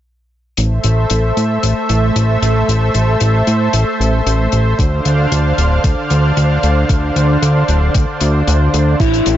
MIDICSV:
0, 0, Header, 1, 5, 480
1, 0, Start_track
1, 0, Key_signature, 0, "minor"
1, 0, Tempo, 526316
1, 527, Time_signature, 4, 2, 24, 8
1, 8546, End_track
2, 0, Start_track
2, 0, Title_t, "Soft synth lead"
2, 0, Program_c, 0, 80
2, 8205, Note_on_c, 0, 64, 97
2, 8546, Note_off_c, 0, 64, 0
2, 8546, End_track
3, 0, Start_track
3, 0, Title_t, "Analog synth pad"
3, 0, Program_c, 1, 89
3, 528, Note_on_c, 1, 72, 71
3, 529, Note_on_c, 1, 57, 82
3, 529, Note_on_c, 1, 69, 72
3, 529, Note_on_c, 1, 76, 86
3, 4332, Note_off_c, 1, 57, 0
3, 4332, Note_off_c, 1, 69, 0
3, 4332, Note_off_c, 1, 76, 0
3, 4368, Note_on_c, 1, 77, 84
3, 4369, Note_on_c, 1, 50, 78
3, 4369, Note_on_c, 1, 62, 69
3, 8171, Note_off_c, 1, 50, 0
3, 8171, Note_off_c, 1, 62, 0
3, 8171, Note_off_c, 1, 72, 0
3, 8171, Note_off_c, 1, 77, 0
3, 8207, Note_on_c, 1, 64, 88
3, 8208, Note_on_c, 1, 57, 78
3, 8208, Note_on_c, 1, 60, 77
3, 8546, Note_off_c, 1, 57, 0
3, 8546, Note_off_c, 1, 60, 0
3, 8546, Note_off_c, 1, 64, 0
3, 8546, End_track
4, 0, Start_track
4, 0, Title_t, "Analog synth bass"
4, 0, Program_c, 2, 38
4, 527, Note_on_c, 2, 33, 98
4, 724, Note_off_c, 2, 33, 0
4, 767, Note_on_c, 2, 33, 87
4, 964, Note_off_c, 2, 33, 0
4, 1007, Note_on_c, 2, 33, 88
4, 1204, Note_off_c, 2, 33, 0
4, 1247, Note_on_c, 2, 45, 80
4, 1444, Note_off_c, 2, 45, 0
4, 1487, Note_on_c, 2, 33, 80
4, 1585, Note_off_c, 2, 33, 0
4, 1728, Note_on_c, 2, 33, 101
4, 1924, Note_off_c, 2, 33, 0
4, 1967, Note_on_c, 2, 33, 90
4, 2164, Note_off_c, 2, 33, 0
4, 2207, Note_on_c, 2, 33, 79
4, 2404, Note_off_c, 2, 33, 0
4, 2447, Note_on_c, 2, 33, 100
4, 2644, Note_off_c, 2, 33, 0
4, 2687, Note_on_c, 2, 33, 83
4, 2884, Note_off_c, 2, 33, 0
4, 2927, Note_on_c, 2, 33, 85
4, 3124, Note_off_c, 2, 33, 0
4, 3166, Note_on_c, 2, 45, 81
4, 3363, Note_off_c, 2, 45, 0
4, 3406, Note_on_c, 2, 33, 86
4, 3505, Note_off_c, 2, 33, 0
4, 3647, Note_on_c, 2, 33, 95
4, 3844, Note_off_c, 2, 33, 0
4, 3887, Note_on_c, 2, 33, 89
4, 4084, Note_off_c, 2, 33, 0
4, 4128, Note_on_c, 2, 33, 79
4, 4324, Note_off_c, 2, 33, 0
4, 4367, Note_on_c, 2, 38, 95
4, 4564, Note_off_c, 2, 38, 0
4, 4607, Note_on_c, 2, 38, 89
4, 4804, Note_off_c, 2, 38, 0
4, 4847, Note_on_c, 2, 38, 87
4, 5044, Note_off_c, 2, 38, 0
4, 5088, Note_on_c, 2, 26, 84
4, 5284, Note_off_c, 2, 26, 0
4, 5326, Note_on_c, 2, 38, 86
4, 5425, Note_off_c, 2, 38, 0
4, 5568, Note_on_c, 2, 38, 96
4, 5765, Note_off_c, 2, 38, 0
4, 5809, Note_on_c, 2, 38, 89
4, 6005, Note_off_c, 2, 38, 0
4, 6049, Note_on_c, 2, 38, 82
4, 6245, Note_off_c, 2, 38, 0
4, 6287, Note_on_c, 2, 38, 90
4, 6484, Note_off_c, 2, 38, 0
4, 6527, Note_on_c, 2, 38, 87
4, 6724, Note_off_c, 2, 38, 0
4, 6767, Note_on_c, 2, 38, 86
4, 6964, Note_off_c, 2, 38, 0
4, 7008, Note_on_c, 2, 26, 80
4, 7205, Note_off_c, 2, 26, 0
4, 7247, Note_on_c, 2, 38, 83
4, 7345, Note_off_c, 2, 38, 0
4, 7488, Note_on_c, 2, 38, 95
4, 7684, Note_off_c, 2, 38, 0
4, 7729, Note_on_c, 2, 38, 90
4, 7925, Note_off_c, 2, 38, 0
4, 7968, Note_on_c, 2, 38, 79
4, 8164, Note_off_c, 2, 38, 0
4, 8207, Note_on_c, 2, 33, 96
4, 8404, Note_off_c, 2, 33, 0
4, 8448, Note_on_c, 2, 33, 89
4, 8546, Note_off_c, 2, 33, 0
4, 8546, End_track
5, 0, Start_track
5, 0, Title_t, "Drums"
5, 522, Note_on_c, 9, 42, 82
5, 613, Note_off_c, 9, 42, 0
5, 762, Note_on_c, 9, 42, 76
5, 853, Note_off_c, 9, 42, 0
5, 1001, Note_on_c, 9, 42, 93
5, 1092, Note_off_c, 9, 42, 0
5, 1250, Note_on_c, 9, 42, 68
5, 1341, Note_off_c, 9, 42, 0
5, 1488, Note_on_c, 9, 42, 98
5, 1580, Note_off_c, 9, 42, 0
5, 1726, Note_on_c, 9, 42, 80
5, 1817, Note_off_c, 9, 42, 0
5, 1969, Note_on_c, 9, 42, 85
5, 2060, Note_off_c, 9, 42, 0
5, 2212, Note_on_c, 9, 42, 80
5, 2303, Note_off_c, 9, 42, 0
5, 2453, Note_on_c, 9, 42, 99
5, 2544, Note_off_c, 9, 42, 0
5, 2684, Note_on_c, 9, 42, 68
5, 2776, Note_off_c, 9, 42, 0
5, 2921, Note_on_c, 9, 42, 101
5, 3013, Note_off_c, 9, 42, 0
5, 3165, Note_on_c, 9, 42, 74
5, 3257, Note_off_c, 9, 42, 0
5, 3404, Note_on_c, 9, 42, 100
5, 3495, Note_off_c, 9, 42, 0
5, 3658, Note_on_c, 9, 42, 68
5, 3749, Note_off_c, 9, 42, 0
5, 3890, Note_on_c, 9, 42, 91
5, 3982, Note_off_c, 9, 42, 0
5, 4122, Note_on_c, 9, 42, 69
5, 4213, Note_off_c, 9, 42, 0
5, 4367, Note_on_c, 9, 36, 107
5, 4373, Note_on_c, 9, 42, 87
5, 4458, Note_off_c, 9, 36, 0
5, 4465, Note_off_c, 9, 42, 0
5, 4608, Note_on_c, 9, 42, 72
5, 4699, Note_off_c, 9, 42, 0
5, 4850, Note_on_c, 9, 42, 98
5, 4941, Note_off_c, 9, 42, 0
5, 5090, Note_on_c, 9, 42, 72
5, 5182, Note_off_c, 9, 42, 0
5, 5326, Note_on_c, 9, 36, 121
5, 5327, Note_on_c, 9, 42, 99
5, 5418, Note_off_c, 9, 36, 0
5, 5418, Note_off_c, 9, 42, 0
5, 5565, Note_on_c, 9, 42, 77
5, 5656, Note_off_c, 9, 42, 0
5, 5809, Note_on_c, 9, 42, 87
5, 5900, Note_off_c, 9, 42, 0
5, 6048, Note_on_c, 9, 42, 72
5, 6139, Note_off_c, 9, 42, 0
5, 6287, Note_on_c, 9, 36, 110
5, 6287, Note_on_c, 9, 42, 97
5, 6378, Note_off_c, 9, 36, 0
5, 6378, Note_off_c, 9, 42, 0
5, 6530, Note_on_c, 9, 42, 73
5, 6622, Note_off_c, 9, 42, 0
5, 6772, Note_on_c, 9, 42, 100
5, 6863, Note_off_c, 9, 42, 0
5, 7006, Note_on_c, 9, 42, 72
5, 7098, Note_off_c, 9, 42, 0
5, 7245, Note_on_c, 9, 42, 90
5, 7247, Note_on_c, 9, 36, 120
5, 7336, Note_off_c, 9, 42, 0
5, 7338, Note_off_c, 9, 36, 0
5, 7483, Note_on_c, 9, 42, 78
5, 7574, Note_off_c, 9, 42, 0
5, 7729, Note_on_c, 9, 42, 84
5, 7820, Note_off_c, 9, 42, 0
5, 7968, Note_on_c, 9, 42, 71
5, 8060, Note_off_c, 9, 42, 0
5, 8207, Note_on_c, 9, 36, 111
5, 8208, Note_on_c, 9, 49, 89
5, 8217, Note_on_c, 9, 42, 76
5, 8298, Note_off_c, 9, 36, 0
5, 8299, Note_off_c, 9, 49, 0
5, 8308, Note_off_c, 9, 42, 0
5, 8333, Note_on_c, 9, 42, 58
5, 8424, Note_off_c, 9, 42, 0
5, 8444, Note_on_c, 9, 42, 96
5, 8535, Note_off_c, 9, 42, 0
5, 8546, End_track
0, 0, End_of_file